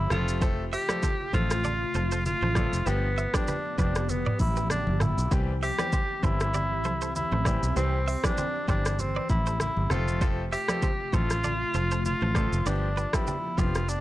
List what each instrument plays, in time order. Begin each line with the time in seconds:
0.10 fingered electric bass F1, ambient pad C3 A3 F4, grand piano F3 A3 C4 A4, tenor saxophone F4, clean electric guitar F4 A4, cross-stick, high conga, low conga, shaker
0.28 shaker
0.41 grand piano F3 A3 C4 A4, clean electric guitar A4 C5, kick, shaker
0.73 tenor saxophone G4, clean electric guitar C5 E5, open hi-hat, shaker
0.89 grand piano F3 A3 C4 A4, clean electric guitar B4 D5, cross-stick, high conga, shaker
1.03 clean electric guitar A4 C5, kick, low conga, shaker
1.33 fingered electric bass A1, grand piano F3 A3 C4 A4, tenor saxophone F4, clean electric guitar A4 C5, kick, high conga, shaker
1.50 cross-stick, shaker
1.64 clean electric guitar A4 D5, low conga, shaker
1.94 fingered electric bass F1, clean electric guitar A4 C5, high conga, shaker
2.12 clean electric guitar A4 C5, shaker
2.26 tenor saxophone F4, low conga, shaker
2.42 fingered electric bass A1, clean electric guitar A4 C5, high conga
2.55 grand piano F3 A3 C4 A4, clean electric guitar B4 D5, kick, cross-stick, high conga, low conga, shaker
2.73 fingered electric bass F1, shaker
2.86 fingered electric bass G1, grand piano F3 B3 D4 G4, ambient pad F3 B3 G4, tenor saxophone B3, clean electric guitar G4 B4, shaker
3.18 clean electric guitar C5 E5, shaker
3.34 grand piano F3 B3 D4 G4, tenor saxophone D4, clean electric guitar B4 D5, kick, cross-stick, high conga, shaker
3.48 clean electric guitar G4 B4, low conga, shaker
3.78 fingered electric bass F1, grand piano F3 B3 D4 G4, tenor saxophone D4, clean electric guitar G4 B4, kick, high conga, shaker
3.95 cross-stick, shaker
4.09 tenor saxophone B3, low conga, shaker
4.26 clean electric guitar B4 D5, mid tom
4.39 fingered electric bass A1, tenor saxophone E4, kick, open hi-hat, high conga, shaker
4.56 clean electric guitar G4 B4, shaker
4.70 tenor saxophone D4, cross-stick, low conga, shaker
4.87 fingered electric bass G1, high conga
5.00 tenor saxophone E4, clean electric guitar F4 A4, cross-stick, mid tom, high conga, low conga, shaker
5.18 fingered electric bass B1, shaker
5.31 fingered electric bass C2, grand piano E3 G3 C4 G4, ambient pad E3 C4, clean electric guitar G4 C5, kick, shaker
5.62 tenor saxophone G4, clean electric guitar C5 E5, open hi-hat, shaker
5.79 grand piano E3 G3 C4 G4, clean electric guitar B4 D5, cross-stick, high conga, shaker
5.92 clean electric guitar G4 C5, kick, low conga, shaker
6.23 fingered electric bass G1, grand piano E3 G3 C4 G4, tenor saxophone E4, clean electric guitar A4 C5, kick, high conga, shaker
6.40 cross-stick, shaker
6.54 clean electric guitar G4 D5, low conga, shaker
6.84 fingered electric bass C2, clean electric guitar A4 C5, high conga, shaker
7.01 clean electric guitar A4 C5, shaker
7.16 tenor saxophone E4, low conga, shaker
7.32 fingered electric bass A1, clean electric guitar A4 C5, high conga
7.45 grand piano E3 G3 C4 G4, clean electric guitar B4 D5, kick, cross-stick, high conga, low conga, shaker
7.63 fingered electric bass B1, shaker
7.76 fingered electric bass C2, grand piano E3 G3 C4 G4, tenor saxophone C4, clean electric guitar G4 C5, shaker
8.08 clean electric guitar C5 E5, open hi-hat, shaker
8.24 grand piano E3 G3 C4 G4, tenor saxophone D4, clean electric guitar B4 D5, kick, cross-stick, high conga, shaker
8.38 clean electric guitar G4 C5, low conga, shaker
8.68 fingered electric bass G1, grand piano E3 G3 C4 G4, tenor saxophone D4, clean electric guitar A4 C5, kick, high conga, shaker
8.85 cross-stick, shaker
8.99 tenor saxophone C4, low conga, shaker
9.16 clean electric guitar B4 D5
9.29 fingered electric bass A1, tenor saxophone E4, kick, high conga, shaker
9.46 clean electric guitar A4 C5, shaker
9.60 tenor saxophone E4, cross-stick, low conga, shaker
9.77 fingered electric bass G1, high conga
9.90 fingered electric bass F1, ambient pad C3 A3 F4, grand piano F3 A3 C4 A4, tenor saxophone F4, clean electric guitar F4 A4, cross-stick, high conga, low conga, shaker
10.08 shaker
10.21 grand piano F3 A3 C4 A4, clean electric guitar A4 C5, kick, shaker
10.52 tenor saxophone G4, clean electric guitar C5 E5, open hi-hat, shaker
10.68 grand piano F3 A3 C4 A4, clean electric guitar B4 D5, cross-stick, high conga, shaker
10.82 clean electric guitar A4 C5, kick, low conga, shaker
11.13 fingered electric bass A1, grand piano F3 A3 C4 A4, tenor saxophone F4, clean electric guitar A4 C5, kick, high conga, shaker
11.30 cross-stick, shaker
11.44 clean electric guitar A4 D5, low conga, shaker
11.74 fingered electric bass F1, clean electric guitar A4 C5, high conga, shaker
11.91 clean electric guitar A4 C5, shaker
12.05 tenor saxophone F4, low conga, shaker
12.22 fingered electric bass A1, clean electric guitar A4 C5, high conga
12.35 grand piano F3 A3 C4 A4, clean electric guitar B4 D5, kick, cross-stick, high conga, low conga, shaker
12.52 fingered electric bass F1, shaker
12.66 fingered electric bass G1, grand piano F3 B3 D4 G4, ambient pad F3 B3 G4, tenor saxophone D4, clean electric guitar B4 D5, shaker
12.97 clean electric guitar G4 B4, shaker
13.13 grand piano F3 B3 D4 G4, tenor saxophone E4, clean electric guitar F4 A4, kick, cross-stick, high conga, shaker
13.27 clean electric guitar D4 G4, low conga, shaker
13.58 fingered electric bass F1, grand piano F3 B3 D4 G4, clean electric guitar E4 G4, tenor saxophone F4, kick, high conga, shaker
13.75 cross-stick, shaker
13.89 tenor saxophone D4, shaker